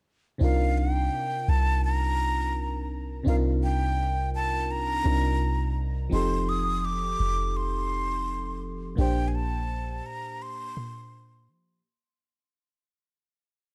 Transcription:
0.38 1.09 C2 loud
0.38 3.21 C3 medium
0.38 3.22 C4 medium
0.38 3.22 D4 medium
0.38 3.23 D#4 medium
0.38 0.79 F5 medium
0.43 3.23 F4 medium
0.43 3.24 A#4 medium
0.78 1.51 G5 medium
1.48 3.22 C2 loud
1.48 1.84 A5 medium
1.85 2.87 A#5 loud
3.23 5.01 C2 loud
3.23 5.00 C3 medium
3.23 5.00 C4 medium
3.23 5.01 D4 medium
3.23 5.02 D#4 medium
3.27 5.02 F4 medium
3.27 5.03 A#4 medium
3.27 3.35 F5 medium
3.63 4.30 G5 medium
4.35 4.72 A5 loud
4.71 5.77 A#5 loud
5.04 6.08 C2 loud
5.04 6.11 C3 soft
5.04 6.10 C4 soft
5.04 6.12 D4 soft
5.04 6.11 D#4 soft
5.04 6.12 F4 soft
5.04 6.13 A#4 medium
6.09 7.15 F1 loud
6.09 8.92 F3 medium
6.09 8.93 C4 medium
6.09 8.94 D#4 medium
6.09 6.50 C6 loud
6.14 8.95 G4 medium
6.14 8.95 A4 medium
6.49 6.86 D#6 loud
6.85 7.58 D6 loud
7.20 8.94 F1 loud
7.56 8.63 C6 medium
8.95 10.01 A#1 loud
8.95 11.78 A#2 medium
8.95 11.79 A#3 medium
8.95 11.80 D4 medium
8.95 9.29 G5 medium
9.00 11.80 G4 medium
9.00 11.81 C5 medium
9.28 9.37 G#5 medium
9.35 10.07 A5 medium
10.06 10.43 A#5 medium
10.42 11.48 C6 loud
10.77 11.50 A#2 loud
11.48 11.82 F3 medium

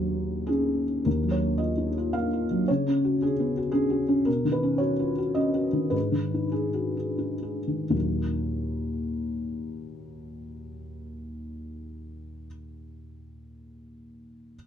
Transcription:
0.00 1.03 D#2 soft
0.00 0.84 F#3 soft
0.00 0.49 F#4 medium
0.47 1.01 C#4 soft
0.47 1.02 D#4 soft
0.47 1.05 G#4 medium
1.05 2.64 D#2 soft
1.05 1.33 A#4 soft
1.23 1.53 F#3 soft
1.31 1.59 C#5 soft
1.41 1.70 A#3 soft
1.58 1.88 F4 soft
1.58 2.13 D#5 soft
1.77 1.96 D#4 soft
1.98 2.26 F4 soft
2.13 2.43 A#3 soft
2.13 2.68 F5 medium
2.33 2.62 F4 soft
2.51 2.69 F#3 soft
2.68 4.24 C#3 soft
2.68 3.21 C#5 medium
2.88 3.15 C#4 soft
3.04 3.32 F#4 soft
3.22 3.51 C#4 soft
3.22 3.70 G#4 soft
3.40 3.57 B3 soft
3.57 3.85 F#4 soft
3.72 4.02 C#4 soft
3.72 4.26 G#4 medium
3.90 4.19 F#4 soft
4.08 4.27 C#4 soft
4.25 5.91 B2 soft
4.25 4.53 A#4 medium
4.45 4.74 D#3 soft
4.52 4.80 B4 medium
4.63 4.92 C#4 soft
4.78 5.10 F#4 soft
4.78 5.36 C#5 medium
4.99 5.18 F4 soft
5.18 5.48 F#4 soft
5.35 5.67 C#4 soft
5.35 5.93 D#5 medium
5.54 5.86 F#4 soft
5.73 5.94 D#3 soft
5.90 7.88 G#2 soft
5.90 6.53 B4 medium
6.12 6.46 D#3 soft
6.34 6.68 D#4 soft
6.52 6.96 G#4 soft
6.74 6.97 F#4 soft
6.97 7.34 G#4 soft
7.18 7.58 D#4 soft
7.42 7.83 G#4 soft
7.68 7.93 D#3 soft
7.90 12.46 D#2 soft
7.90 12.46 A#2 soft
7.90 12.47 F#3 soft
7.90 12.48 A#3 soft
7.90 12.46 D#4 soft

